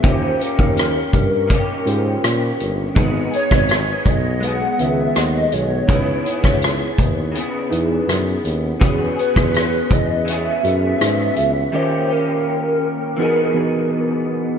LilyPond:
<<
  \new Staff \with { instrumentName = "Soft synth lead" } { \time 4/4 \key e \major \tempo 4 = 82 c''8 ais'2. r8 | r8 cis''4 dis''8 fis''8 e''8 dis''8 cis''8~ | cis''4. r2 r8 | r8 b'4 dis''8 e''2 |
c''8 ais'2. r8 | }
  \new Staff \with { instrumentName = "Reed electric piano" } { \time 4/4 \key e \major <cis' f' fis' g' ais'>2 r8 <cis' f' g' c''>4. | <b dis' gis' b'>2 r8 <dis b gis' b'>4. | <dis' e' gis' b'>2 r8 <dis' e' gis' b'>4. | <cis' fis' g' gis' b'>2 r8 <cis' fis' gis' a' b'>4. |
<dis cis' f' g' ais'>2 <e b dis' fis' gis'>8 <e b dis' fis' gis'>4. | }
  \new Staff \with { instrumentName = "Clean electric guitar" } { \time 4/4 \key e \major <dis ais cis' g'>8 <ais cis' g'>4. <dis ais cis' g'>2 | <gis b dis' gis'>8 <b dis' gis'>4. <gis b gis'>2 | <cis b e' gis'>8 <b e' gis'>4. <cis b e' gis'>2 | <e b cis' gis'>8 <b cis' gis'>4. <e b cis' gis'>2 |
<dis ais cis' g'>8 <ais cis' g'>4. <e b dis' gis'>2 | }
  \new Staff \with { instrumentName = "Tuba" } { \clef bass \time 4/4 \key e \major dis,8 r16 dis,8. g,8. r16 gis,8 ais,8 g,,8 | gis,,8 r16 gis,,8. b,,4 cis,8 dis,8 b,,8 | cis,8 r16 cis,8. dis,8. r16 e,8 fis,8 dis,8 | e,8 r16 e,8. e,4 fis,8 gis,8 cis,8 |
r1 | }
  \new DrumStaff \with { instrumentName = "Drums" } \drummode { \time 4/4 <hh bd>8 hh16 bd16 <hh ss>8 <hh bd>8 <hh bd>8 hh8 <hh ss>8 hh8 | <hh bd>8 hh16 <bd ss>16 <hh ss>8 <hh bd>8 hh8 hh8 <hh ss>8 hh8 | <hh bd>8 hh16 <bd ss>16 <hh ss>8 <hh bd>8 hh8 hh8 <hh ss>8 hh8 | <hh bd>8 hh16 <bd ss>16 <hh ss>8 <hh bd>8 hh8 hh8 <hh ss>8 hh8 |
r4 r4 r4 r4 | }
>>